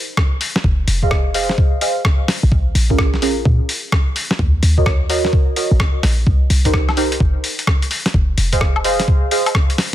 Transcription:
0.17 kick, cross-stick
0.41 open hi-hat
0.56 snare
0.64 808-style bass F1, kick
0.88 808-style bass F1, open hi-hat
1.03 synth stab G#4 C5 D#5 F5, kick
1.11 kick, cross-stick
1.34 synth stab G#4 C5 D#5 F5, open hi-hat
1.49 snare
1.58 kick
1.81 synth stab G#4 C5 D#5 F5, open hi-hat
2.05 kick, cross-stick
2.28 snare, open hi-hat
2.43 808-style bass A#1
2.52 808-style bass A#1, kick
2.75 808-style bass A#1, open hi-hat
2.90 synth stab C#4 F4 G#4 A#4, kick
2.99 kick, cross-stick
3.14 snare
3.22 synth stab C#4 F4 G#4 A#4, open hi-hat
3.45 808-style bass A#2, kick
3.69 open hi-hat
3.92 kick, cross-stick
4.16 open hi-hat
4.31 snare
4.39 808-style bass D#2, kick
4.63 808-style bass D#2, open hi-hat
4.78 synth stab F#4 A#4 C#5 D#5, kick
4.86 kick, cross-stick
5.09 synth stab F#4 A#4 C#5 D#5, open hi-hat
5.25 snare
5.33 kick
5.56 synth stab F#4 A#4 C#5 D#5, open hi-hat
5.71 808-style bass A#1
5.80 kick, cross-stick
6.03 808-style bass A#1, snare, open hi-hat
6.27 808-style bass C2, kick
6.50 808-style bass C2, open hi-hat
6.65 synth stab D#4 G4 A#4 C5, kick, closed hi-hat
6.73 kick, cross-stick
6.89 snare, high woodblock
6.97 synth stab D#4 G4 A#4 C5, open hi-hat
7.12 closed hi-hat
7.20 808-style bass G1, kick
7.44 open hi-hat
7.59 closed hi-hat
7.67 kick, cross-stick
7.82 closed hi-hat
7.91 open hi-hat
8.06 snare, closed hi-hat
8.14 808-style bass F1, kick
8.38 808-style bass F1, open hi-hat
8.53 synth stab G#4 C5 D#5 F5, kick, closed hi-hat
8.61 kick, cross-stick
8.76 high woodblock
8.84 synth stab G#4 C5 D#5 F5, open hi-hat
9.00 snare, closed hi-hat
9.08 kick
9.31 synth stab G#4 C5 D#5 F5, open hi-hat
9.46 closed hi-hat, high woodblock
9.55 kick, cross-stick
9.70 closed hi-hat
9.78 snare, open hi-hat

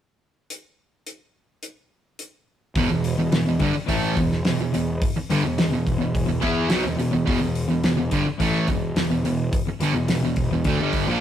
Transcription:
0.50 closed hi-hat
1.07 closed hi-hat
1.63 closed hi-hat
2.19 closed hi-hat
2.75 picked electric bass E1, overdriven electric guitar E2 B2, kick, open hi-hat
2.90 picked electric bass E1, overdriven electric guitar E2 B2
3.04 open hi-hat
3.18 picked electric bass E1, overdriven electric guitar E2 B2
3.32 picked electric bass E1, overdriven electric guitar E2 B2, snare, open hi-hat
3.46 picked electric bass E1, overdriven electric guitar E2 B2
3.59 picked electric bass G1, overdriven electric guitar G2 D3, kick, open hi-hat
3.73 muted overdriven electric guitar stroke, muted picked electric bass stroke, muted distorted electric guitar stroke
3.86 picked electric bass A1, overdriven electric guitar A2 E3 A3, kick, open hi-hat
4.15 picked electric bass E1, overdriven electric guitar E2 B2, kick, open hi-hat
4.32 snare
4.45 picked electric bass E1, overdriven electric guitar E2 B2, snare, open hi-hat
4.59 picked electric bass E1, overdriven electric guitar E2 B2
4.72 picked electric bass E1, overdriven electric guitar E2 B2, open hi-hat
5.02 kick, open hi-hat
5.16 muted overdriven electric guitar stroke, muted picked electric bass stroke, muted distorted electric guitar stroke
5.30 picked electric bass G1, overdriven electric guitar G2 D3, open hi-hat
5.44 picked electric bass E1, overdriven electric guitar E2 B2
5.58 picked electric bass E1, overdriven electric guitar E2 B2, snare, open hi-hat
5.70 picked electric bass E1, overdriven electric guitar E2 B2
5.87 kick, open hi-hat
5.98 picked electric bass E1, overdriven electric guitar E2 B2
6.15 kick, open hi-hat
6.26 picked electric bass E1, overdriven electric guitar E2 B2
6.40 picked electric bass E2, overdriven electric guitar E3 B3 E4, kick, open hi-hat
6.68 picked electric bass B1, overdriven electric guitar B2 F#3, snare, open hi-hat
6.83 picked electric bass E1, overdriven electric guitar E2 B2
6.97 picked electric bass E1, overdriven electric guitar E2 B2, open hi-hat
7.11 picked electric bass E1, overdriven electric guitar E2 B2
7.25 picked electric bass E1, overdriven electric guitar E2 B2, kick, open hi-hat
7.41 picked electric bass E1, overdriven electric guitar E2 B2
7.55 open hi-hat
7.68 picked electric bass E1, overdriven electric guitar E2 B2
7.83 picked electric bass E1, overdriven electric guitar E2 B2, snare, open hi-hat
7.97 picked electric bass E1, overdriven electric guitar E2 B2
8.11 picked electric bass G1, overdriven electric guitar G2 D3, kick, open hi-hat
8.26 muted overdriven electric guitar stroke, muted picked electric bass stroke, muted distorted electric guitar stroke
8.38 picked electric bass A1, overdriven electric guitar A2 E3 A3, kick, open hi-hat
8.68 picked electric bass E1, overdriven electric guitar E2 B2, kick, open hi-hat
8.96 picked electric bass E1, overdriven electric guitar E2 B2, snare, open hi-hat
9.10 picked electric bass E1, overdriven electric guitar E2 B2
9.23 picked electric bass E1, overdriven electric guitar E2 B2, open hi-hat
9.53 kick, open hi-hat
9.67 muted picked electric bass stroke, muted overdriven electric guitar stroke, muted distorted electric guitar stroke
9.80 picked electric bass G1, overdriven electric guitar G2 D3, open hi-hat
9.93 picked electric bass E1, overdriven electric guitar E2 B2
10.08 picked electric bass E1, overdriven electric guitar E2 B2, snare, open hi-hat
10.23 picked electric bass E1, overdriven electric guitar E2 B2
10.36 kick, open hi-hat
10.51 picked electric bass E1, overdriven electric guitar E2 B2
10.64 picked electric bass D2, overdriven electric guitar D3 A3, kick, open hi-hat
10.78 picked electric bass G1, overdriven electric guitar G2 D3 G3
10.93 kick, open hi-hat
11.07 picked electric bass A#1, overdriven electric guitar A#2 F3

